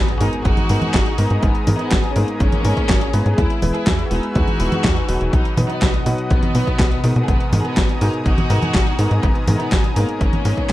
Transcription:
Already playing: G#1 G#4 G#5 A#5 D#6, impact
0.08 closed hi-hat
0.21 G#2 G#3 B3 D#4 F#4 A#4, open hi-hat
0.33 closed hi-hat
0.45 G#1 D#4 F#4, kick, closed hi-hat
0.57 closed hi-hat, high conga
0.69 G#2 G#3 B3 D#4 A#4, open hi-hat
0.82 closed hi-hat, high conga
0.94 G#1, kick, snare, clap, closed hi-hat
1.06 closed hi-hat
1.18 G#2 G#3 B3 D#4 A#4, open hi-hat
1.30 G#2, closed hi-hat
1.43 G#1 B3 D#4, kick, closed hi-hat
1.55 closed hi-hat
1.67 G#2 G#3 B3 D#4 A#4, open hi-hat, high conga
1.79 B3 D#4, closed hi-hat
1.91 G#1, kick, snare, clap, closed hi-hat
2.04 closed hi-hat
2.16 G#2 G#3 A#3 B3 C#4 D#4 A#4, open hi-hat
2.28 closed hi-hat
2.40 G#1 A#3 C#4, kick, closed hi-hat
2.52 closed hi-hat, high conga
2.65 G#2 G#3 B3 D#4 A#4, open hi-hat
2.77 kick, closed hi-hat
2.89 G#1, kick, snare, clap, closed hi-hat
3.01 closed hi-hat
3.13 G#2 G#3 B3 E4 B4, open hi-hat
3.26 G#2, closed hi-hat
3.38 E2 E4 G#4 B4 E6, kick, closed hi-hat
3.50 closed hi-hat
3.62 E1 G#3 B3 E4 B4, open hi-hat, high conga
3.75 E4 G#4, closed hi-hat
3.87 E2, kick, snare, clap, closed hi-hat
3.99 closed hi-hat
4.11 E1 G#3 B3 D#4 E4 F#4 B4, open hi-hat
4.23 closed hi-hat
4.35 E2 D#4 F#4, kick, closed hi-hat
4.47 closed hi-hat, high conga
4.60 E1 G#3 B3 E4 B4, open hi-hat
4.72 closed hi-hat, high conga
4.84 E2, kick, snare, clap, closed hi-hat
4.96 closed hi-hat
5.09 E1 B2 F#3 B3 D#4 B4, open hi-hat
5.21 E1, closed hi-hat
5.33 B1 B2 D#4 F#4 D#5 F#5 D#6, kick, closed hi-hat
5.45 closed hi-hat
5.57 B2 F#3 B3 D#4 B4, open hi-hat, high conga
5.70 B3 D#4, closed hi-hat
5.82 B1, kick, snare, clap, closed hi-hat
5.94 closed hi-hat
6.06 B2 F#3 B3 D#4 B4, open hi-hat
6.18 closed hi-hat
6.30 B1 B3, kick, closed hi-hat
6.43 closed hi-hat, high conga
6.55 B2 F#3 B3 D#4 B4, open hi-hat
6.67 kick, closed hi-hat
6.79 B1, kick, snare, clap, closed hi-hat
6.92 closed hi-hat
7.04 G#2 B2 G#3 B3 D#4 A#4, open hi-hat
7.16 B2, closed hi-hat
7.28 G#1 B3 G#4 G#5 A#5, kick, closed hi-hat
7.40 closed hi-hat
7.53 G#2 G#3 B3 D#4 A#4, open hi-hat, high conga
7.65 B3 G#4, closed hi-hat
7.77 G#1, kick, snare, clap, closed hi-hat
7.89 closed hi-hat
8.01 G#2 G#3 B3 D#4 F#4 A#4, open hi-hat
8.14 closed hi-hat
8.26 G#1 D#4 F#4, kick, closed hi-hat
8.38 closed hi-hat, high conga
8.50 G#2 G#3 B3 D#4 A#4, open hi-hat
8.62 closed hi-hat, high conga
8.74 G#1, kick, snare, clap, closed hi-hat
8.87 closed hi-hat
8.99 G#2 G#3 B3 D#4 A#4, open hi-hat
9.11 G#2, closed hi-hat
9.23 G#1 B3 D#4, kick, closed hi-hat
9.35 closed hi-hat
9.47 G#2 G#3 B3 D#4 A#4, open hi-hat, high conga
9.60 B3 D#4, closed hi-hat
9.72 G#1, kick, snare, clap, closed hi-hat
9.84 closed hi-hat
9.96 G#2 G#3 A#3 B3 C#4 D#4 A#4, open hi-hat
10.09 closed hi-hat
10.21 G#1 A#3 C#4, kick, closed hi-hat
10.33 closed hi-hat, high conga
10.45 G#2 G#3 B3 D#4 A#4, open hi-hat
10.57 kick, closed hi-hat

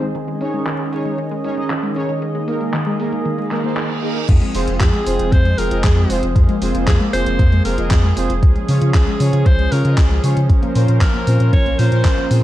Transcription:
Already playing: C2 D#3 C4 G#4 D#5
0.02 G#3, closed hi-hat
0.15 D#3 C#4 D#5, closed hi-hat
0.28 G#3, closed hi-hat
0.41 C#4 D#4 G#4 C#5, open hi-hat
0.54 G#3, closed hi-hat
0.67 D#3, clap, closed hi-hat
0.80 G#3, closed hi-hat
0.92 C#4 D#4 G#4 C#5, open hi-hat
1.05 G#3, closed hi-hat
1.18 D#3, closed hi-hat
1.31 G#3, closed hi-hat
1.44 C#4 D#4 G#4 C#5, open hi-hat
1.57 G#3 C#4 D#4 G#4 D#5, closed hi-hat
1.70 D#3, clap, closed hi-hat
1.83 G#3, closed hi-hat
1.96 C#4 D#4 G#4 C#5, open hi-hat
2.09 G#3, closed hi-hat
2.22 D#3 A#3 G#4, closed hi-hat
2.35 G#3, closed hi-hat
2.48 A#3 D#4 G#4 A#4, open hi-hat
2.61 G#3, closed hi-hat
2.74 D#3, clap, closed hi-hat
2.86 G#3, closed hi-hat
2.99 A#3 D#4 G#4 A#4, open hi-hat
3.12 G#3, closed hi-hat
3.25 D#3, closed hi-hat, reverse cymbal
3.38 G#3, closed hi-hat
3.51 G#3 A#3 D#4 G#4 A#4, clap, open hi-hat
3.64 A#3 D#4 G#4 C5, closed hi-hat
3.77 D#3, clap, closed hi-hat
3.90 D#3, closed hi-hat
4.03 A#3 D#4 G#4 A#4, open hi-hat
4.16 D#4, open hi-hat
4.29 F2 F3 G#3 C4 G#4, kick, closed hi-hat, crash
4.42 G#3, closed hi-hat
4.54 F1 C4 F4 G#4 C5, open hi-hat
4.68 F1 F4, closed hi-hat
4.81 F2 F3 G#4, kick, clap, closed hi-hat
4.93 G#3, closed hi-hat
5.06 F1 C4 F4 G#4 C5, open hi-hat
5.19 F1 F4, closed hi-hat
5.32 F2 F3 C5, kick, closed hi-hat
5.45 G#3, closed hi-hat
5.58 F1 C4 F4 G#4 A#4 C5, open hi-hat
5.71 F1 C4 F4 G#4 D#5, closed hi-hat
5.84 F2 F3 G#4, kick, clap, closed hi-hat
5.97 G#3, closed hi-hat
6.10 F1 C4 F4 G#4 C5, open hi-hat
6.23 F1 F4, closed hi-hat
6.36 F2 F3 A#3, kick, closed hi-hat
6.49 G#3, closed hi-hat
6.62 F1 C4 F4 G#4 C5, open hi-hat
6.74 F1 F4, closed hi-hat
6.87 F2 F3 G#4, kick, clap, closed hi-hat
7.00 G#3, closed hi-hat
7.13 F1 C4 F4 G#4 C5, open hi-hat
7.26 F1 F4, closed hi-hat
7.39 F2 F3, kick, closed hi-hat
7.52 G#3, closed hi-hat
7.65 F1 C4 F4 G#4 A#4 C5, open hi-hat
7.78 F1 C4 F4 G#4 D#5, closed hi-hat
7.91 F2 F3 G#4, kick, clap, closed hi-hat
8.04 G#3, closed hi-hat
8.17 F1 C4 F4 G#4 C5, open hi-hat
8.30 F1 F4, closed hi-hat
8.43 C#2 F3 C#4, kick, closed hi-hat
8.55 G#3, closed hi-hat
8.68 C#3 C#4 F4 G#4 C#5, open hi-hat
8.81 C#3 F4, closed hi-hat
8.94 C#2 F3 G#4, kick, clap, closed hi-hat
9.07 G#3, closed hi-hat
9.20 C#3 C#4 F4 G#4 C#5, open hi-hat
9.33 C#3 F4, closed hi-hat
9.46 C#2 F3 C5, kick, closed hi-hat
9.59 G#3, closed hi-hat
9.72 C#3 C#4 F4 G#4 A#4 C#5, open hi-hat
9.85 C#3 C#4 F4 G#4 D#5, closed hi-hat
9.98 C#2 F3 G#4, kick, clap, closed hi-hat
10.11 G#3, closed hi-hat
10.24 C#3 C#4 F4 G#4 C#5, open hi-hat
10.37 C#3 F4, closed hi-hat
10.49 A#1 F3 A#4 C5, kick, closed hi-hat
10.62 A#3, closed hi-hat
10.75 A#2 C4 C#4 F4 A#4 C5, open hi-hat
10.88 A#2 C#4, closed hi-hat
11.01 A#1 F3 A#4, kick, clap, closed hi-hat
11.14 A#3, closed hi-hat
11.27 A#2 C4 C#4 F4 A#4 C5, open hi-hat
11.40 A#2 C#4, closed hi-hat
11.53 A#1 F3 C#5, kick, closed hi-hat
11.66 A#3, closed hi-hat
11.79 A#2 C4 C#4 F4 A#4 C5, open hi-hat
11.92 A#2 C#4 F4 A#4 C5, closed hi-hat
12.05 A#1 F3, kick, clap, closed hi-hat
12.18 A#3, closed hi-hat
12.30 A#2 C4 F4 G#4 C5, open hi-hat

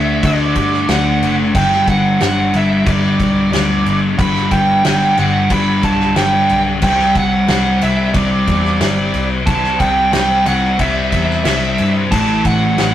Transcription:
Already playing: D2 D3 A3 D4 E5
0.22 D2 D3 A3 D4 D5, kick, crash
0.55 G2, kick, crash
0.73 snare
0.87 D2 D3 A3 D4 F#5, snare, crash
1.22 F#1, crash
1.54 G1 G2 D3 G3 G5, kick, crash
1.71 snare
1.87 G1 F#5, kick, crash
2.20 G1 G2 D3 G3 F#5, snare, crash
2.52 G1 D3 G3 E5, crash
2.85 G1 G2 D3 G3, kick, crash
2.90 D5
3.20 B1, kick, crash
3.52 D2 G2 D3 G3 D5, snare, crash
3.86 G1, crash
4.17 G1 G2 D3 G3 B5, kick, crash
4.35 snare
4.51 G1 G5, kick, crash
4.84 G1 G2 D3 G3 G5, snare, crash
5.17 G1 D3 G3 F#5, crash
5.50 G1 G2 D3 G3 B5, kick, crash
5.83 B1 A5, kick, crash
6.00 snare
6.16 G1 G2 D3 G3 G5, snare, crash
6.49 B1, crash
6.82 C2 C3 G3 C4 G5, kick, crash
6.99 snare
7.15 C2 F#5, kick, crash
7.48 C2 C3 G3 C4 F#5, snare, crash
7.81 C2 G3 C4 E5, crash
8.13 C2 C3 G3 C4 D5, kick, crash
8.47 E2, kick, crash
8.65 snare
8.81 G1 C3 G3 C4 D5, snare, crash
9.14 C2, crash
9.47 C2 C3 G3 C4 A5, kick, crash
9.63 snare
9.80 C2 G5, kick, crash
10.12 C2 C3 G3 C4 G5, snare, crash
10.45 C2 G3 C4 F#5, crash
10.78 C2 C3 G3 C4 E5, kick, crash
11.11 E2 E5, kick, crash
11.30 snare
11.44 C2 C3 G3 C4 E5, snare, crash
11.78 G2, crash
12.11 A1 A2 E3 A3 A5, kick, crash
12.45 A1 F#5, kick, crash
12.77 A1 A2 E3 A3 F#5, snare, crash

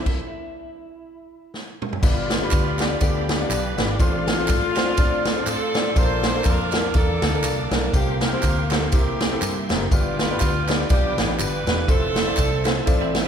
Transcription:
Already playing: E4
0.06 kick, crash
1.54 snare
1.82 mid tom
1.93 floor tom
2.02 G1 G2 B3 D4 F4 G4 B4 D5 F5 B5, kick, crash, tambourine
2.30 snare, ride, tambourine
2.41 B3 D4 F4 G4 B4
2.51 D2, kick, clap, ride, tambourine
2.79 B3 D4 F4 G4 D5, snare, clap, ride, tambourine
3.00 D2 B3 D4 F4 G4 A4, kick, ride, tambourine
3.29 G4, snare, ride, tambourine
3.39 B3 D4 F4 G4 D5
3.50 B1 B4, clap, ride, tambourine
3.77 G#1 B3 D4 F4 G4 B4, snare, ride, tambourine
3.99 A1 A2 C4 D4 F4 A4 C5 C6, kick, ride, tambourine
4.27 snare, ride, tambourine
4.37 C4 D4 F4 A4 C5
4.48 A2, kick, clap, ride, tambourine
4.76 C4 D4 F4 A4 C5, snare, clap, ride, tambourine
4.97 A2 C4 D4 F4 A4 D5, kick, ride, tambourine
5.25 snare, ride, tambourine
5.36 C4 D4 F4 A4 D5
5.47 A2 C4 F4 A4, clap, ride, tambourine
5.74 C4 D4 F4 A4 D5, snare, ride, tambourine
5.96 A#1 A#2 A#3 D4 F4 A4 A#4 C5 F5 A5 D6, kick, ride, tambourine
6.23 snare, ride, tambourine
6.34 A#3 D4 F4 A4 A#4
6.44 F2 D4 F4 A#4, kick, clap, ride, tambourine
6.72 A#3 D4 F4 A4 A#4, snare, clap, ride, tambourine
6.94 E2 A#3 D4 F4 A4 A#4, kick, ride, tambourine
7.22 D2, snare, ride, tambourine
7.32 A#3 D4 F4 A4 A#4
7.43 C2, clap, ride, tambourine
7.71 B1 A#3 D4 F4 A4 A#4, snare, ride, tambourine
7.93 C2 C3 A#3 C4 F4 G4 A#4 G5 C6, kick, ride, tambourine
8.21 F4 G4 A#4, snare, ride, tambourine
8.32 A#3 C4 F4 G4 C5
8.42 D2, kick, clap, ride, tambourine
8.70 A#3 C4 F4 G4 A4 A#4, snare, clap, ride, tambourine
8.91 C2 C3 A#3 C4 E4 G4 A#4 E5, kick, ride, tambourine
9.21 snare, ride, tambourine
9.31 A#3 C4 E4 G4 A4
9.42 G2, clap, ride, tambourine
9.69 F#1 A#3 C4 E4 G4 A#4, snare, ride, tambourine
9.91 G1 G2 B3 D4 F4 G4 B4 F5 D6, kick, ride, tambourine
10.19 snare, ride, tambourine
10.30 B3 D4 F4 G4 B4
10.40 D2, kick, clap, ride, tambourine
10.68 B3 D4 F4 G4 D5, snare, clap, ride, tambourine
10.89 B1 B3 D4 F4 G4 D5, kick, ride, tambourine
11.17 A1 G4, snare, ride, tambourine
11.28 B3 D4 F4 G4 D5
11.39 G1 D4 F4 B4, clap, ride, tambourine
11.66 E1 B3 D4 F4 G4 B4, snare, ride, tambourine
11.88 F1 C4 E4 F4 A4 C5 E5 A5 E6, kick, ride, tambourine
12.16 snare, ride, tambourine
12.26 C4 E4 F4 A4 D5
12.37 C2, kick, clap, ride, tambourine
12.65 C4 E4 F4 A4 C5, snare, clap, ride, tambourine
12.85 A1 C4 E4 F4 A4 D5, kick, ride, tambourine
13.01 C4 E4
13.15 snare, ride, tambourine

